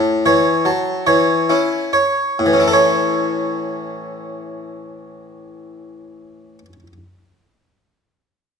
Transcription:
0, 0, Header, 1, 2, 480
1, 0, Start_track
1, 0, Key_signature, 3, "major"
1, 0, Tempo, 818554
1, 864, Tempo, 894188
1, 1345, Time_signature, 6, 3, 24, 8
1, 4686, End_track
2, 0, Start_track
2, 0, Title_t, "Harpsichord"
2, 0, Program_c, 0, 6
2, 0, Note_on_c, 0, 45, 60
2, 0, Note_on_c, 0, 81, 67
2, 135, Note_off_c, 0, 45, 0
2, 150, Note_on_c, 0, 52, 42
2, 152, Note_on_c, 0, 73, 44
2, 153, Note_off_c, 0, 81, 0
2, 383, Note_on_c, 0, 54, 41
2, 387, Note_on_c, 0, 81, 53
2, 390, Note_off_c, 0, 52, 0
2, 391, Note_off_c, 0, 73, 0
2, 619, Note_off_c, 0, 54, 0
2, 625, Note_on_c, 0, 73, 46
2, 626, Note_on_c, 0, 52, 43
2, 633, Note_off_c, 0, 81, 0
2, 876, Note_on_c, 0, 64, 45
2, 879, Note_on_c, 0, 61, 39
2, 881, Note_off_c, 0, 52, 0
2, 881, Note_off_c, 0, 73, 0
2, 1110, Note_on_c, 0, 73, 49
2, 1122, Note_off_c, 0, 64, 0
2, 1123, Note_off_c, 0, 61, 0
2, 1349, Note_off_c, 0, 73, 0
2, 1358, Note_on_c, 0, 45, 52
2, 1394, Note_on_c, 0, 52, 44
2, 1433, Note_on_c, 0, 61, 45
2, 1469, Note_on_c, 0, 64, 44
2, 1509, Note_on_c, 0, 69, 42
2, 1540, Note_on_c, 0, 73, 45
2, 3608, Note_off_c, 0, 45, 0
2, 3644, Note_off_c, 0, 52, 0
2, 3683, Note_off_c, 0, 61, 0
2, 3720, Note_off_c, 0, 64, 0
2, 3760, Note_off_c, 0, 69, 0
2, 3791, Note_off_c, 0, 73, 0
2, 4686, End_track
0, 0, End_of_file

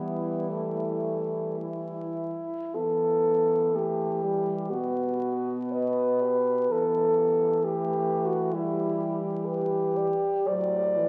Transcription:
0, 0, Header, 1, 5, 480
1, 0, Start_track
1, 0, Key_signature, 1, "minor"
1, 0, Tempo, 1084991
1, 709, Tempo, 1160542
1, 1189, Tempo, 986842
1, 1190, Time_signature, 4, 2, 24, 8
1, 3109, Tempo, 916031
1, 4549, Tempo, 998336
1, 5332, End_track
2, 0, Start_track
2, 0, Title_t, "French horn"
2, 0, Program_c, 0, 60
2, 0, Note_on_c, 0, 64, 41
2, 951, Note_off_c, 0, 64, 0
2, 2132, Note_on_c, 0, 71, 56
2, 2628, Note_on_c, 0, 75, 53
2, 2635, Note_off_c, 0, 71, 0
2, 2872, Note_on_c, 0, 67, 49
2, 2879, Note_off_c, 0, 75, 0
2, 3102, Note_on_c, 0, 69, 44
2, 3109, Note_off_c, 0, 67, 0
2, 3354, Note_on_c, 0, 67, 45
2, 3362, Note_off_c, 0, 69, 0
2, 3586, Note_on_c, 0, 71, 57
2, 3594, Note_off_c, 0, 67, 0
2, 4063, Note_off_c, 0, 71, 0
2, 4066, Note_on_c, 0, 67, 59
2, 4547, Note_on_c, 0, 71, 58
2, 4554, Note_off_c, 0, 67, 0
2, 4794, Note_on_c, 0, 74, 60
2, 4801, Note_off_c, 0, 71, 0
2, 5040, Note_on_c, 0, 72, 50
2, 5048, Note_off_c, 0, 74, 0
2, 5274, Note_on_c, 0, 71, 52
2, 5281, Note_off_c, 0, 72, 0
2, 5332, Note_off_c, 0, 71, 0
2, 5332, End_track
3, 0, Start_track
3, 0, Title_t, "French horn"
3, 0, Program_c, 1, 60
3, 0, Note_on_c, 1, 59, 45
3, 227, Note_on_c, 1, 57, 43
3, 233, Note_off_c, 1, 59, 0
3, 704, Note_off_c, 1, 57, 0
3, 706, Note_on_c, 1, 64, 48
3, 1185, Note_on_c, 1, 69, 65
3, 1191, Note_off_c, 1, 64, 0
3, 1674, Note_on_c, 1, 67, 53
3, 1681, Note_off_c, 1, 69, 0
3, 2139, Note_on_c, 1, 66, 61
3, 2147, Note_off_c, 1, 67, 0
3, 2556, Note_off_c, 1, 66, 0
3, 2639, Note_on_c, 1, 71, 66
3, 3114, Note_on_c, 1, 69, 67
3, 3122, Note_off_c, 1, 71, 0
3, 3599, Note_on_c, 1, 67, 67
3, 3607, Note_off_c, 1, 69, 0
3, 3919, Note_on_c, 1, 66, 59
3, 3927, Note_off_c, 1, 67, 0
3, 4072, Note_on_c, 1, 64, 65
3, 4080, Note_off_c, 1, 66, 0
3, 4408, Note_off_c, 1, 64, 0
3, 4552, Note_on_c, 1, 67, 66
3, 5040, Note_on_c, 1, 74, 80
3, 5047, Note_off_c, 1, 67, 0
3, 5332, Note_off_c, 1, 74, 0
3, 5332, End_track
4, 0, Start_track
4, 0, Title_t, "French horn"
4, 0, Program_c, 2, 60
4, 0, Note_on_c, 2, 55, 39
4, 1017, Note_off_c, 2, 55, 0
4, 1184, Note_on_c, 2, 59, 41
4, 1669, Note_on_c, 2, 57, 47
4, 1676, Note_off_c, 2, 59, 0
4, 1905, Note_on_c, 2, 55, 44
4, 1912, Note_off_c, 2, 57, 0
4, 2132, Note_on_c, 2, 59, 52
4, 2139, Note_off_c, 2, 55, 0
4, 3103, Note_off_c, 2, 59, 0
4, 3106, Note_on_c, 2, 59, 45
4, 3583, Note_off_c, 2, 59, 0
4, 3589, Note_on_c, 2, 57, 51
4, 4073, Note_on_c, 2, 55, 53
4, 4080, Note_off_c, 2, 57, 0
4, 4899, Note_off_c, 2, 55, 0
4, 5041, Note_on_c, 2, 54, 52
4, 5273, Note_on_c, 2, 52, 53
4, 5281, Note_off_c, 2, 54, 0
4, 5332, Note_off_c, 2, 52, 0
4, 5332, End_track
5, 0, Start_track
5, 0, Title_t, "French horn"
5, 0, Program_c, 3, 60
5, 0, Note_on_c, 3, 52, 39
5, 1018, Note_off_c, 3, 52, 0
5, 1185, Note_on_c, 3, 52, 45
5, 2118, Note_off_c, 3, 52, 0
5, 2139, Note_on_c, 3, 47, 49
5, 3091, Note_off_c, 3, 47, 0
5, 3105, Note_on_c, 3, 52, 50
5, 4877, Note_off_c, 3, 52, 0
5, 5044, Note_on_c, 3, 45, 53
5, 5332, Note_off_c, 3, 45, 0
5, 5332, End_track
0, 0, End_of_file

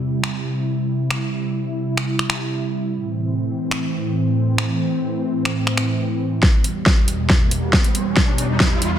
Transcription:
0, 0, Header, 1, 4, 480
1, 0, Start_track
1, 0, Key_signature, 1, "minor"
1, 0, Tempo, 434783
1, 1336, Time_signature, 4, 2, 24, 8
1, 9922, End_track
2, 0, Start_track
2, 0, Title_t, "Analog synth pad"
2, 0, Program_c, 0, 89
2, 0, Note_on_c, 0, 48, 68
2, 0, Note_on_c, 0, 55, 74
2, 0, Note_on_c, 0, 64, 76
2, 3211, Note_off_c, 0, 55, 0
2, 3217, Note_off_c, 0, 48, 0
2, 3217, Note_off_c, 0, 64, 0
2, 3255, Note_on_c, 0, 45, 73
2, 3255, Note_on_c, 0, 60, 80
2, 3256, Note_on_c, 0, 52, 65
2, 7057, Note_off_c, 0, 45, 0
2, 7057, Note_off_c, 0, 52, 0
2, 7057, Note_off_c, 0, 60, 0
2, 7095, Note_on_c, 0, 40, 68
2, 7095, Note_on_c, 0, 47, 67
2, 7095, Note_on_c, 0, 55, 83
2, 9922, Note_off_c, 0, 40, 0
2, 9922, Note_off_c, 0, 47, 0
2, 9922, Note_off_c, 0, 55, 0
2, 9922, End_track
3, 0, Start_track
3, 0, Title_t, "Riser"
3, 0, Program_c, 1, 103
3, 7095, Note_on_c, 1, 60, 80
3, 9922, Note_off_c, 1, 60, 0
3, 9922, End_track
4, 0, Start_track
4, 0, Title_t, "Drums"
4, 260, Note_on_c, 9, 26, 69
4, 370, Note_off_c, 9, 26, 0
4, 1220, Note_on_c, 9, 26, 74
4, 1330, Note_off_c, 9, 26, 0
4, 2180, Note_on_c, 9, 26, 75
4, 2290, Note_off_c, 9, 26, 0
4, 2420, Note_on_c, 9, 26, 51
4, 2531, Note_off_c, 9, 26, 0
4, 2536, Note_on_c, 9, 26, 79
4, 2646, Note_off_c, 9, 26, 0
4, 4100, Note_on_c, 9, 26, 67
4, 4211, Note_off_c, 9, 26, 0
4, 5060, Note_on_c, 9, 26, 76
4, 5170, Note_off_c, 9, 26, 0
4, 6020, Note_on_c, 9, 26, 69
4, 6131, Note_off_c, 9, 26, 0
4, 6260, Note_on_c, 9, 26, 48
4, 6370, Note_off_c, 9, 26, 0
4, 6375, Note_on_c, 9, 26, 74
4, 6486, Note_off_c, 9, 26, 0
4, 7095, Note_on_c, 9, 36, 94
4, 7095, Note_on_c, 9, 38, 46
4, 7205, Note_off_c, 9, 36, 0
4, 7206, Note_off_c, 9, 38, 0
4, 7335, Note_on_c, 9, 42, 78
4, 7445, Note_off_c, 9, 42, 0
4, 7575, Note_on_c, 9, 36, 88
4, 7575, Note_on_c, 9, 38, 49
4, 7685, Note_off_c, 9, 38, 0
4, 7686, Note_off_c, 9, 36, 0
4, 7815, Note_on_c, 9, 42, 74
4, 7925, Note_off_c, 9, 42, 0
4, 8055, Note_on_c, 9, 36, 90
4, 8055, Note_on_c, 9, 38, 50
4, 8166, Note_off_c, 9, 36, 0
4, 8166, Note_off_c, 9, 38, 0
4, 8295, Note_on_c, 9, 42, 80
4, 8406, Note_off_c, 9, 42, 0
4, 8535, Note_on_c, 9, 36, 92
4, 8535, Note_on_c, 9, 38, 50
4, 8646, Note_off_c, 9, 36, 0
4, 8646, Note_off_c, 9, 38, 0
4, 8660, Note_on_c, 9, 42, 37
4, 8770, Note_off_c, 9, 42, 0
4, 8775, Note_on_c, 9, 42, 81
4, 8886, Note_off_c, 9, 42, 0
4, 9015, Note_on_c, 9, 36, 92
4, 9015, Note_on_c, 9, 38, 51
4, 9126, Note_off_c, 9, 36, 0
4, 9126, Note_off_c, 9, 38, 0
4, 9255, Note_on_c, 9, 42, 76
4, 9366, Note_off_c, 9, 42, 0
4, 9495, Note_on_c, 9, 36, 85
4, 9495, Note_on_c, 9, 38, 53
4, 9606, Note_off_c, 9, 36, 0
4, 9606, Note_off_c, 9, 38, 0
4, 9735, Note_on_c, 9, 42, 78
4, 9845, Note_off_c, 9, 42, 0
4, 9922, End_track
0, 0, End_of_file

